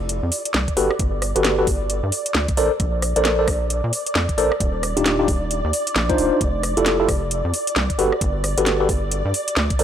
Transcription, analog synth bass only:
0.00 0.21 F1 medium
0.23 0.31 F2 medium
0.54 0.67 C2 medium
0.77 0.89 G1 medium
0.99 1.33 G1 loud
1.36 1.66 G1 medium
1.67 2.01 G1 medium
2.03 2.11 G2 medium
2.35 2.47 D2 medium
2.57 2.70 A#1 medium
2.80 3.14 A#1 loud
3.16 3.46 A#1 medium
3.48 3.81 A#1 medium
3.84 3.92 A#2 medium
4.15 4.28 F2 medium
4.38 4.50 A#1 medium
4.60 4.94 D#1 loud
4.97 5.27 D#1 medium
5.28 5.62 D#1 medium
5.64 5.72 D#2 medium
5.96 6.16 A#1 loud
6.18 6.30 D#1 medium
6.41 6.75 F1 loud
6.77 7.07 F1 medium
7.08 7.42 F1 medium
7.45 7.53 F2 medium
7.76 7.88 C2 medium
7.99 8.11 G1 medium
8.21 8.55 G1 loud
8.58 8.87 G1 medium
8.89 9.23 G1 medium
9.25 9.33 G2 medium
9.57 9.69 D2 medium
9.79 9.84 A#1 medium

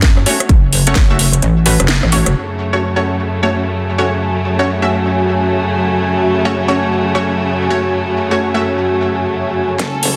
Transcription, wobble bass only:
0.00 0.25 F#2 loud
0.49 0.94 F#1 loud
1.42 1.78 A1 medium
1.80 2.01 F#1 loud
2.03 2.24 A1 loud
2.26 2.34 F#1 loud
9.80 10.16 F#1 medium

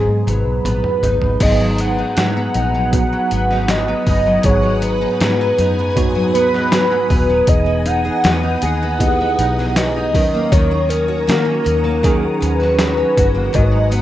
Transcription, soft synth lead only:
0.00 0.26 G#4 medium
0.28 1.44 B4 loud
1.42 1.82 D#5 loud
1.81 2.56 F#5 loud
2.57 3.71 F#5 loud
3.70 4.07 D#5 loud
4.08 4.47 D#5 loud
4.45 4.84 C#5 loud
4.83 6.33 B4 loud
6.34 7.50 B4 loud
7.49 7.87 D#5 medium
7.86 8.62 F#5 loud
8.63 9.79 F#5 loud
9.77 10.53 D#5 loud
10.52 10.91 C#5 loud
10.90 12.43 A#4 loud
12.42 13.57 B4 loud
13.55 13.95 D#5 medium
13.94 14.02 F#5 loud

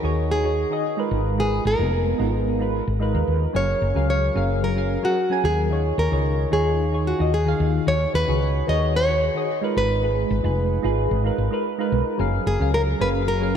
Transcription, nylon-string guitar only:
0.00 0.31 A#4 loud
0.31 1.39 G#4 medium
1.40 1.67 G#4 loud
1.67 2.39 A#4 medium
2.39 2.70 G#4 medium
3.56 4.09 C#5 medium
4.10 4.64 C#5 medium
4.64 5.02 A#4 medium
5.05 5.46 F#4 medium
5.45 5.99 G#4 medium
5.99 6.53 A#4 medium
6.53 7.03 G#4 medium
7.07 7.32 F#4 medium
7.34 7.72 G#4 medium
7.88 8.15 C#5 loud
8.15 8.69 B4 loud
8.69 8.96 D#5 medium
8.96 9.77 C#5 loud
9.78 11.89 B4 medium
12.47 12.72 G#4 medium
12.74 12.81 A#4 loud
13.01 13.09 B4 medium
13.28 13.53 A#4 loud

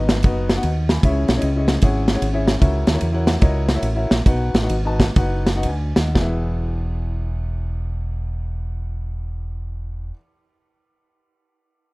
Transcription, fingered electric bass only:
0.00 0.24 G#1 medium
0.24 0.58 F#1 loud
0.64 0.97 D#2 medium
1.04 1.25 C#2 loud
1.29 1.41 B1 medium
1.43 1.76 C#2 medium
1.82 2.16 G#1 loud
2.22 2.56 G#1 medium
2.62 2.83 C#2 loud
2.87 2.99 D#2 medium
3.02 3.36 E2 medium
3.42 3.77 C#2 loud
3.83 4.06 A1 loud
4.11 4.24 A#1 medium
4.26 4.50 B1 loud
4.54 4.67 A1 medium
4.70 5.09 G#1 loud
5.16 5.66 F#1 loud
5.64 5.92 D2 medium
5.97 6.13 D#2 medium
6.16 10.11 E1 loud

